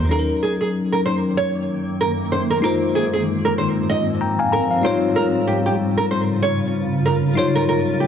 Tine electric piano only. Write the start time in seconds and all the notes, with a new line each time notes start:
0.07 F#3 C#4 D#4
0.12 A4
0.19 A#4
2.60 G#3 D#4 F4
2.65 C5
4.21 G5 A#5
4.39 F5 G#5
4.52 A#5
4.71 F5
4.82 G3 D#4 F4
4.86 C#5
7.34 F#3 D#4 F4
7.39 G3 C#5